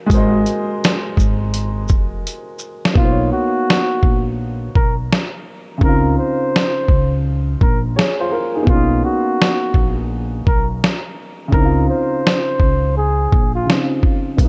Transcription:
0.06 upright piano G#3 F#4, kick
0.11 upright bass G#1, upright piano A#4 C5, closed hi-hat
0.17 upright piano D#5
0.46 closed hi-hat, shaker
0.84 snare, closed hi-hat
1.17 upright bass G#1, kick, shaker
1.54 closed hi-hat
1.88 upright bass F1, kick, shaker
2.27 closed hi-hat
2.59 shaker
2.85 snare
2.94 upright bass B1, upright piano A#3 B3, flugelhorn F4, kick
3.01 upright piano D#4 C5
3.11 upright piano C#5
3.33 flugelhorn F#4
3.70 snare
4.03 upright bass A#1, kick
4.75 upright bass B1, flugelhorn A#4, kick
5.13 snare
5.78 upright bass C#2, upright piano C#3 C4, kick
5.84 upright piano D#4, flugelhorn A#4
5.89 upright piano F4
6.19 flugelhorn C5
6.56 snare
6.88 upright bass C#2, kick
7.61 upright bass A#1, flugelhorn A#4, kick
7.96 upright piano G#4 C#5, snare
8.20 upright piano F4 C5
8.31 upright piano F4 A#4
8.55 upright piano D#4 G#4
8.63 upright piano A#3 B3
8.67 upright bass B1, upright piano C#4, flugelhorn F4, kick
8.74 upright piano D#4
9.05 flugelhorn F#4
9.42 snare
9.74 upright bass A#1, kick
10.47 upright bass B1, flugelhorn A#4, kick
10.84 snare
11.48 upright piano C#3 C4
11.53 upright bass C#2, upright piano D#4, flugelhorn A#4, kick
11.58 upright piano E4
11.65 upright piano F4
11.90 flugelhorn C5
12.27 snare
12.60 upright bass C#2, kick
12.97 flugelhorn G#4
13.32 upright bass A#1, kick
13.55 flugelhorn F4
13.65 upright piano C#3 C4 D#4
13.70 upright piano F4, snare
14.03 kick
14.37 upright bass B1, upright piano A#3 B3, kick, closed hi-hat
14.44 upright piano D#4

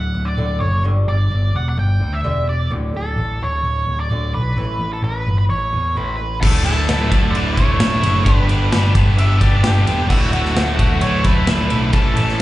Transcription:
Already playing: picked electric bass D1, steel-string acoustic guitar D2 A2, lead electric guitar F#5
0.14 picked electric bass D1, steel-string acoustic guitar D2 A2
0.25 lead electric guitar D5
0.37 picked electric bass D1, steel-string acoustic guitar D2 A2 D3
0.60 picked electric bass F#1, steel-string acoustic guitar D2 A2, lead electric guitar C#5
0.84 picked electric bass G1, steel-string acoustic guitar G2 D3 G3
1.08 picked electric bass G1, steel-string acoustic guitar G2 D3, lead electric guitar D5
1.30 picked electric bass G1, steel-string acoustic guitar G2 D3
1.53 picked electric bass E1, steel-string acoustic guitar G2 D3, lead electric guitar F#5
1.69 lead electric guitar F#5
1.77 picked electric bass G1, steel-string acoustic guitar G2 D3, lead electric guitar G5
2.00 picked electric bass D2, steel-string acoustic guitar G2 D3
2.14 lead electric guitar E5
2.23 picked electric bass E1, steel-string acoustic guitar G2 D3 G3
2.47 steel-string acoustic guitar G2 D3, lead electric guitar D5
2.70 picked electric bass D1, steel-string acoustic guitar D2 A2 D3
2.93 picked electric bass D1, steel-string acoustic guitar D2 A2, lead electric guitar A4
3.16 picked electric bass A1, steel-string acoustic guitar D2 A2
3.40 picked electric bass D1, steel-string acoustic guitar D2 A2, lead electric guitar C#5
3.63 picked electric bass D1, steel-string acoustic guitar D2 A2
3.87 picked electric bass D1, steel-string acoustic guitar D2 A2
4.00 lead electric guitar D5
4.10 picked electric bass D1, steel-string acoustic guitar D2 A2 D3
4.33 picked electric bass B1, steel-string acoustic guitar D2 A2, lead electric guitar B4
4.57 picked electric bass A1, steel-string acoustic guitar A2 E3 A3
4.79 picked electric bass A1, steel-string acoustic guitar A2 E3
4.93 lead electric guitar A4
5.03 picked electric bass A1, steel-string acoustic guitar A2 E3, lead electric guitar B4
5.27 picked electric bass G1, steel-string acoustic guitar A2 E3
5.38 lead electric guitar B4
5.50 picked electric bass A1, steel-string acoustic guitar A2 E3, lead electric guitar C#5
5.73 picked electric bass E2, steel-string acoustic guitar A2 E3
5.95 picked electric bass A1, steel-string acoustic guitar A2 E3 A3, lead electric guitar B4
6.19 steel-string acoustic guitar A2 E3
6.41 picked electric bass D1, distorted electric guitar D2 A2 D3 A3 E4, lead electric guitar A4, kick, crash
6.64 distorted electric guitar A3 E4, lead electric guitar A4, ride
6.69 distorted electric guitar D3
6.88 picked electric bass D1, distorted electric guitar A2 D3 A3 E4, snare, ride
7.11 picked electric bass D1, distorted electric guitar D2 A2 D3 A3 E4, kick, ride
7.31 picked electric bass D1, distorted electric guitar A2, lead electric guitar D5
7.35 distorted electric guitar D3 A3 E4, ride
7.54 distorted electric guitar A3 E4, lead electric guitar C#5, kick, ride
7.59 distorted electric guitar D3
7.79 picked electric bass D1, distorted electric guitar D2 A2 D3 A3 E4, snare, ride
8.01 picked electric bass F#1, distorted electric guitar D3 A3 E4, ride
8.24 picked electric bass G1, distorted electric guitar G2 D3 G3 B3 D4 G4, lead electric guitar B4, kick, ride
8.48 picked electric bass G1, distorted electric guitar G3 B3 D4 G4, ride
8.71 picked electric bass G1, distorted electric guitar G3 B3 D4 G4, snare, ride
8.95 picked electric bass G1, distorted electric guitar G2 D3 G3 B3 D4 G4, kick, ride
9.17 picked electric bass G1, distorted electric guitar G3 B3 D4 G4, lead electric guitar E5, ride
9.41 picked electric bass G1, distorted electric guitar G3 B3 D4 G4, lead electric guitar D5, kick, ride
9.63 picked electric bass G1, distorted electric guitar G2 D3 G3 B3 D4 G4, lead electric guitar G4, snare, ride
9.86 picked electric bass E1, distorted electric guitar G3 B3 D4 G4, ride
10.08 picked electric bass D1, distorted electric guitar D2 A2 D3 A3 E4, lead electric guitar F#4, kick, crash
10.33 distorted electric guitar D3 A3 E4, lead electric guitar F#4, ride
10.45 snare
10.55 picked electric bass D1, distorted electric guitar A2 D3 A3 E4, snare, ride
10.77 picked electric bass D1, distorted electric guitar D2 A2 D3 A3 E4, kick, ride
11.01 picked electric bass D1, distorted electric guitar A2 D3 A3 E4, lead electric guitar C#5, ride
11.23 distorted electric guitar D3 A3 E4, lead electric guitar B4, kick, ride
11.47 picked electric bass D1, distorted electric guitar D2 A2 D3 A3 E4, snare, ride
11.70 picked electric bass B1, distorted electric guitar D3 A3 E4, ride
11.92 picked electric bass A1, distorted electric guitar A2 E3 A3 C#4 E4 A4, lead electric guitar A4, kick, ride
12.15 picked electric bass A1, distorted electric guitar A3 C#4 E4 A4, ride
12.28 snare

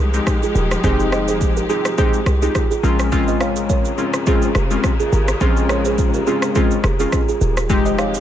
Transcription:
Already playing: 808-style bass C2, string section F3 G#3 D#4 G4
0.13 synth keys G#3 C4 D#4 G4, shaker
0.27 kick, cross-stick, shaker
0.42 kalimba F4 G#4, shaker
0.55 808-style bass D#1, kalimba G4 A#4, shaker
0.71 cross-stick, shaker
0.83 808-style bass F1, synth keys G#3 C4 D#4 G4, kalimba G#4 C5, kick, shaker
1.00 shaker
1.12 kalimba C5 D#5, cross-stick, shaker
1.28 kalimba G#4 C5, shaker
1.41 kick, shaker
1.57 kalimba G4 A#4, shaker
1.69 synth keys G#3 C4 D#4 G4, kalimba F4 G#4, shaker
1.85 cross-stick, shaker
1.98 synth keys G#3 C4 D#4 G4, kalimba G#4 C5, kick, shaker
2.13 shaker
2.26 808-style bass C2, kalimba G4 A#4, cross-stick, shaker
2.42 synth keys G#3 C4 D#4 G4, kalimba F4 G#4, shaker
2.55 kick, cross-stick, shaker
2.71 kalimba F4 G#4, shaker
2.83 808-style bass A#1, string section C#3 G#3 A#3, synth keys G#3 C4 C#4 F4, kalimba F4 A#4, shaker
2.99 cross-stick, shaker
3.12 synth keys G#3 C4 C#4 F4, kick, shaker
3.28 kalimba C5 D#5, shaker
3.41 kalimba C#5 F5, cross-stick, shaker
3.56 shaker
3.70 kalimba A#4 C#5, kick, shaker
3.85 shaker
3.98 synth keys G#3 C4 C#4 F4, shaker
4.14 cross-stick, shaker
4.26 synth keys G#3 C4 C#4 F4, kalimba G#4 C5, kick, shaker
4.42 shaker
4.55 808-style bass F1, kalimba G4 A#4, cross-stick, shaker
4.71 synth keys G#3 C4 C#4 F4, shaker
4.84 kick, cross-stick, shaker
5.00 kalimba F4 G#4, shaker
5.12 808-style bass G#1, kalimba G4 A#4, shaker
5.28 cross-stick, shaker
5.41 808-style bass A#1, synth keys G#3 C4 C#4 F4, kalimba G#4 C5, kick, shaker
5.57 shaker
5.69 kalimba A#4 C#5, cross-stick, shaker
5.85 kalimba G#4 C5, shaker
5.98 kick, shaker
6.14 kalimba G4 A#4, shaker
6.27 synth keys G#3 C4 C#4 F4, kalimba F4 G#4, shaker
6.42 cross-stick, shaker
6.55 synth keys G#3 C4 C#4 F4, kalimba G#4 C5, kick, shaker
6.71 shaker
6.84 808-style bass F1, kalimba G4 A#4, cross-stick, shaker
7.00 synth keys G#3 C4 C#4 F4, kalimba F4 G#4, shaker
7.12 kick, cross-stick, shaker
7.29 kalimba F4 G#4, shaker
7.41 808-style bass D#1, kalimba G4 A#4, shaker
7.57 cross-stick, shaker
7.69 808-style bass F1, string section F3 G#3 D#4 G4, synth keys G#3 C4 D#4 G4, kick, shaker
7.86 kalimba C5 D#5, shaker
7.98 kalimba C#5 F5, cross-stick, shaker
8.14 shaker

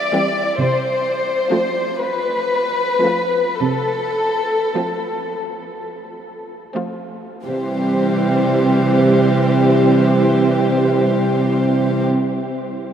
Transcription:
Already playing: violin section D5
0.13 viola section E3 G3, violin section C4 G4
0.59 cello section C3, violin section C5
1.51 viola section F3 A3, violin section C4 F4
2.02 violin section B4
3.04 viola section F3 A3, violin section C4 F4
3.59 cello section C3, violin section A4
4.76 viola section F3 A3, violin section C4 F4
6.76 viola section F3 A3, violin section C4 F4
7.46 cello section C3, viola section E3 G3, violin section C4 G4 C5

